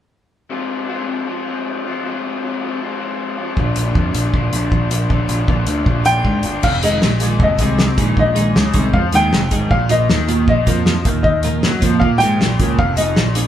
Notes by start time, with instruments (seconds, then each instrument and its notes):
0.50 overdriven electric guitar F2 C3 F3 G#3 C4 F4
0.88 overdriven electric guitar F2 C3 F3 G#3 C4 F4
1.08 overdriven electric guitar F3 G#3 C4 F4
1.26 overdriven electric guitar F3 G#3 C4 F4
1.46 overdriven electric guitar F3 G#3 C4 F4
1.86 overdriven electric guitar F3 G#3 C4 F4
2.04 overdriven electric guitar F2 C3 F3 G#3 C4 F4
2.42 overdriven electric guitar F2 C3 F3 G#3 C4 F4
2.61 overdriven electric guitar F3 G#3 C4 F4
2.81 overdriven electric guitar F3 G#3 C4 F4
2.99 overdriven electric guitar F3 G#3 C4 F4
3.38 overdriven electric guitar F3 G#3 C4 F4
3.57 picked electric bass A#1, overdriven electric guitar A#2 D3 A#3 D4 F4, kick
3.76 picked electric bass A#1, closed hi-hat
3.95 picked electric bass F2, overdriven electric guitar A#2 D3 A#3 D4 F4, kick
4.14 picked electric bass A#1, overdriven electric guitar A#3 D4 F4, closed hi-hat
4.34 picked electric bass A#1, overdriven electric guitar D3 A#3 D4 F4, kick
4.53 picked electric bass A#1, overdriven electric guitar A#3 D4 F4, closed hi-hat
4.72 picked electric bass A#1, kick
4.91 picked electric bass A#1, overdriven electric guitar A#3 D4 F4, closed hi-hat
5.10 picked electric bass A#1, overdriven electric guitar A#2 D3 A#3 D4 F4, kick
5.29 picked electric bass A#1, closed hi-hat
5.48 picked electric bass A#1, overdriven electric guitar A#2 D3 A#3 D4 F4, kick
5.67 picked electric bass D2, overdriven electric guitar A#3 D4 F4, closed hi-hat
5.86 picked electric bass A#1, overdriven electric guitar D3 A#3 D4 F4, kick
6.05 picked electric bass A#1, overdriven electric guitar A#3 D4 F4, upright piano G5, closed hi-hat
6.24 picked electric bass G#2, kick
6.43 picked electric bass G1, overdriven electric guitar D4 F4, closed hi-hat
6.48 overdriven electric guitar A#3
6.63 picked electric bass F1, overdriven electric guitar F2, upright piano F5, kick, crash
6.83 clean electric guitar D#3 G#3 D#4 G#4, upright piano D#5, closed hi-hat
7.02 picked electric bass A#1, overdriven electric guitar A#2, snare
7.20 clean electric guitar D#3 G#3 D#4 G#4, closed hi-hat
7.40 picked electric bass F1, overdriven electric guitar F2, upright piano D#5, kick
7.59 picked electric bass C2, overdriven electric guitar C3, clean electric guitar D#3 G#3 D#4 G#4, kick, closed hi-hat
7.79 snare
7.98 picked electric bass A#1, overdriven electric guitar A#2, clean electric guitar D#3 G#3 D#4 G#4, kick, closed hi-hat
8.17 upright piano D#5, kick
8.35 clean electric guitar D#3 G#3 D#4 G#4, closed hi-hat
8.56 picked electric bass C#2, overdriven electric guitar C#3, snare
8.73 picked electric bass C2, overdriven electric guitar C3, clean electric guitar D#3 G#3 D#4 G#4, kick, closed hi-hat
8.93 picked electric bass F2, overdriven electric guitar F3, upright piano F5, kick
9.13 picked electric bass D#2, clean electric guitar D#3 G#3 D#4 G#4, overdriven electric guitar D#3, upright piano G5, closed hi-hat
9.33 picked electric bass F1, overdriven electric guitar F2, snare
9.51 picked electric bass G#1, overdriven electric guitar G#2, clean electric guitar D#3 G#3 D#4 G#4, kick, closed hi-hat
9.71 picked electric bass A#1, overdriven electric guitar A#2, upright piano F5, kick
9.89 clean electric guitar A#2 F3 A#3 F4, upright piano D#5, closed hi-hat
10.10 picked electric bass D#2, overdriven electric guitar D#3, snare
10.28 clean electric guitar A#2 F3 A#3 F4, closed hi-hat
10.48 picked electric bass A#1, overdriven electric guitar A#2, upright piano D#5, kick
10.66 picked electric bass F2, clean electric guitar A#2 F3 A#3 F4, overdriven electric guitar F3, kick, closed hi-hat
10.86 snare
11.05 picked electric bass D#2, clean electric guitar A#2 F3 A#3 F4, overdriven electric guitar D#3, kick, closed hi-hat
11.23 upright piano D#5, kick
11.43 clean electric guitar A#2 F3 A#3 F4, closed hi-hat
11.63 picked electric bass F#2, overdriven electric guitar F#3, snare
11.81 picked electric bass F2, clean electric guitar A#2 F3 A#3 F4, overdriven electric guitar F3, kick, closed hi-hat
12.00 picked electric bass A#2, overdriven electric guitar A#3, upright piano F5, kick
12.18 clean electric guitar A#2 F3 A#3 F4, upright piano G5, closed hi-hat
12.22 picked electric bass G#2, overdriven electric guitar G#3
12.40 picked electric bass A#1, overdriven electric guitar A#2, snare
12.59 picked electric bass C#2, clean electric guitar A#2 F3 A#3 F4, overdriven electric guitar C#3, kick, closed hi-hat
12.78 picked electric bass F1, overdriven electric guitar F2, upright piano F5, kick
12.97 clean electric guitar F3 C4 D#4 G#4, upright piano D#5, closed hi-hat
13.16 picked electric bass A#1, overdriven electric guitar A#2, snare
13.35 clean electric guitar F3 C4 D#4 G#4, closed hi-hat